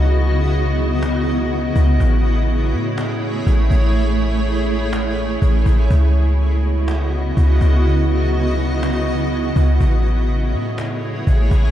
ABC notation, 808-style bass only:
X:1
M:4/4
L:1/8
Q:1/4=123
K:C#m
V:1 name="808-style bass" clef=bass
C,,6- C,, C,, | A,,,3 A,,3 A,,, A,,,- | A,,,6 A,,, A,,, | C,,6 C,, C,,- |
C,,6- C,, C,, | A,,,3 A,,3 A,,, A,,, |]